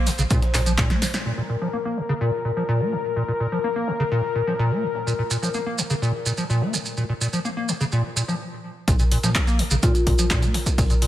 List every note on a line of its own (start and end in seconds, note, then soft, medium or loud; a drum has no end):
0.00 1.27 C5 medium
0.07 0.11 A#2 medium
0.07 closed hi-hat medium
0.07 open hi-hat loud
0.07 maracas medium
0.18 0.26 A#1 medium
0.18 0.23 C#3 loud
0.18 closed hi-hat medium
0.18 maracas medium
0.30 0.40 A#2 loud
0.30 kick loud
0.30 closed hi-hat medium
0.30 maracas soft
0.42 snare soft
0.42 closed hi-hat soft
0.54 0.82 A#1 medium
0.54 0.61 A#2 medium
0.54 snare loud
0.54 clap medium
0.54 closed hi-hat medium
0.54 open hi-hat loud
0.54 maracas medium
0.66 0.73 F3 medium
0.66 closed hi-hat medium
0.66 maracas soft
0.78 0.92 A#2 loud
0.78 kick loud
0.78 snare medium
0.78 clap loud
0.78 closed hi-hat medium
0.78 maracas soft
0.90 0.97 A#1 loud
0.90 1.03 A#3 medium
0.90 snare medium
0.90 closed hi-hat soft
1.02 1.06 A#2 medium
1.02 snare medium
1.02 closed hi-hat medium
1.02 open hi-hat loud
1.02 maracas medium
1.14 snare soft
1.14 snare medium
1.14 closed hi-hat medium
1.14 maracas medium
1.26 1.32 A#2 medium
1.26 8.40 A#4 medium
1.26 closed hi-hat medium
1.38 1.42 A#2 medium
1.49 1.56 A#2 medium
1.49 closed hi-hat medium
1.61 1.68 F3 medium
1.61 snare medium
1.73 1.77 A#3 medium
1.85 1.99 A#3 medium
1.97 2.01 A#2 medium
1.97 closed hi-hat medium
2.09 2.13 C#3 medium
2.21 2.31 A#2 loud
2.21 closed hi-hat medium
2.45 2.51 A#2 medium
2.45 closed hi-hat medium
2.57 2.63 F3 medium
2.57 closed hi-hat soft
2.69 2.82 A#2 medium
2.69 closed hi-hat medium
2.80 2.94 A#3 medium
2.80 snare soft
2.92 2.96 A#2 medium
2.92 snare soft
2.92 closed hi-hat medium
3.16 3.23 A#2 medium
3.16 open hi-hat medium
3.28 3.32 A#2 medium
3.28 closed hi-hat soft
3.40 3.47 A#2 medium
3.40 closed hi-hat medium
3.52 3.59 F3 medium
3.52 closed hi-hat soft
3.64 3.68 A#3 medium
3.64 closed hi-hat medium
3.76 3.89 A#3 medium
3.88 3.92 A#2 medium
3.88 snare medium
3.88 closed hi-hat medium
4.00 4.04 C#3 medium
4.11 4.21 A#2 loud
4.11 closed hi-hat medium
4.35 4.42 A#2 medium
4.35 closed hi-hat medium
4.47 4.54 F3 medium
4.47 snare soft
4.59 4.73 A#2 medium
4.59 closed hi-hat medium
4.71 4.84 A#3 medium
4.83 4.87 A#2 medium
4.83 closed hi-hat medium
4.95 snare soft
5.07 5.13 A#2 medium
5.07 closed hi-hat medium
5.07 maracas soft
5.19 5.23 A#2 medium
5.31 5.37 A#2 medium
5.31 closed hi-hat medium
5.31 maracas medium
5.42 5.49 F3 medium
5.42 snare medium
5.42 maracas medium
5.54 5.58 A#3 medium
5.54 closed hi-hat medium
5.54 maracas soft
5.66 5.80 A#3 medium
5.78 5.82 A#2 medium
5.78 closed hi-hat medium
5.78 maracas medium
5.90 5.94 C#3 medium
5.90 maracas soft
6.02 6.12 A#2 loud
6.02 closed hi-hat medium
6.02 maracas soft
6.26 6.32 A#2 medium
6.26 closed hi-hat medium
6.26 maracas medium
6.37 6.44 F3 medium
6.37 closed hi-hat soft
6.37 maracas soft
6.50 6.63 A#2 loud
6.50 closed hi-hat medium
6.50 maracas soft
6.62 6.75 A#3 medium
6.62 snare soft
6.73 6.77 A#2 medium
6.73 snare soft
6.73 closed hi-hat medium
6.73 maracas medium
6.85 maracas soft
6.97 7.04 A#2 medium
6.97 open hi-hat medium
6.97 maracas soft
7.09 7.13 A#2 medium
7.09 closed hi-hat soft
7.21 7.28 A#2 medium
7.21 closed hi-hat medium
7.21 maracas medium
7.33 7.40 F3 medium
7.33 closed hi-hat soft
7.33 maracas medium
7.45 7.49 A#3 medium
7.45 closed hi-hat medium
7.45 maracas soft
7.57 7.70 A#3 medium
7.69 7.73 A#2 medium
7.69 closed hi-hat medium
7.69 maracas medium
7.81 7.85 C#3 medium
7.81 maracas soft
7.92 8.02 A#2 loud
7.92 closed hi-hat medium
7.92 maracas soft
8.16 8.23 A#2 medium
8.16 closed hi-hat medium
8.16 maracas medium
8.28 8.35 F3 medium
8.28 snare soft
8.28 maracas soft
8.88 9.16 A#1 loud
8.88 8.94 A#2 medium
8.88 11.07 A#4 medium
8.88 kick loud
8.88 closed hi-hat medium
8.88 maracas medium
8.99 9.04 A#2 medium
8.99 closed hi-hat soft
8.99 maracas soft
9.12 9.18 A#2 medium
9.12 closed hi-hat medium
9.12 open hi-hat loud
9.23 9.38 A#2 medium
9.23 9.30 F3 medium
9.23 snare medium
9.23 closed hi-hat medium
9.23 maracas medium
9.35 9.39 A#3 medium
9.35 kick loud
9.35 snare loud
9.35 clap loud
9.35 closed hi-hat medium
9.35 maracas medium
9.47 9.62 A#1 medium
9.47 9.61 A#3 medium
9.47 closed hi-hat soft
9.47 maracas soft
9.59 9.63 A#2 medium
9.59 closed hi-hat medium
9.59 open hi-hat loud
9.71 9.78 A#1 medium
9.71 9.75 C#3 loud
9.71 closed hi-hat medium
9.71 maracas medium
9.83 9.93 A#2 loud
9.83 9.91 F4 medium
9.83 kick loud
9.83 closed hi-hat medium
9.83 maracas medium
9.95 10.02 F4 medium
9.95 closed hi-hat soft
9.95 maracas soft
10.07 10.35 A#1 medium
10.07 10.13 A#2 medium
10.07 kick medium
10.07 closed hi-hat medium
10.07 open hi-hat loud
10.18 10.25 F3 medium
10.18 closed hi-hat soft
10.18 closed hi-hat medium
10.18 maracas medium
10.30 10.44 A#2 loud
10.30 kick loud
10.30 snare loud
10.30 clap loud
10.30 closed hi-hat medium
10.30 maracas medium
10.42 10.50 A#2 loud
10.42 10.56 A#3 medium
10.42 snare soft
10.42 closed hi-hat soft
10.42 maracas soft
10.54 10.58 A#2 medium
10.54 snare soft
10.54 closed hi-hat medium
10.54 open hi-hat loud
10.66 kick medium
10.66 closed hi-hat medium
10.66 maracas medium
10.78 11.06 A#1 loud
10.78 10.85 A#2 medium
10.78 kick loud
10.78 closed hi-hat medium
10.78 open hi-hat medium
10.78 maracas medium
10.90 10.94 A#2 medium
10.90 closed hi-hat soft
10.90 maracas soft
11.02 11.07 A#2 medium
11.02 closed hi-hat medium
11.02 open hi-hat loud